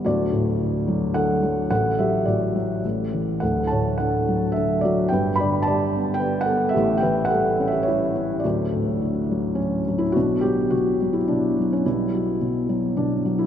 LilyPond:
<<
  \new Staff \with { instrumentName = "Felt piano" } { \time 3/4 \key d \major \tempo 4 = 107 << { d''2 fis''4 | fis''8 e''8 d''4 r4 | fis''8 a''8 fis''4 e''8 d''8 | g''8 b''8 a''4 g''8 fis''8 |
e''8 g''8 fis''8. e''16 cis''4 | d''2 cis'8. e'16 | \key b \minor fis'8 g'8 fis'8. e'16 d'8. cis'16 | e'4 r4 d'8. e'16 | } \\ { fis'2 a'4 | a'8 g'8 fis'4 r4 | a'8 cis''8 a'4 a'8 fis'8 | b'8 d''8 d''4 b'8 a'8 |
g'8 b'8 a'8. g'16 e'4 | fis'2~ fis'8 r8 | d'4. r4. | g4. r4. | } >> }
  \new Staff \with { instrumentName = "Felt piano" } { \clef bass \time 3/4 \key d \major <d,, d,>8 a,8 d8 fis8 d8 fis8 | <a,, a,>8 fis8 a,8 fis8 <a,, a,>8 e8 | <d,, d,>8 a,8 d8 fis8 d8 fis8 | <g,, g,>8 d8 g8 b8 g8 b8 |
<a,, a,>8 e8 g8 cis'8 g8 cis'8 | <d,, d,>8 a,8 d8 fis8 d8 fis8 | \key b \minor <b,, b,>8 fis8 b,8 fis8 b,8 fis8 | <b,, b,>8 fis'8 b,8 fis8 b,8 fis8 | }
>>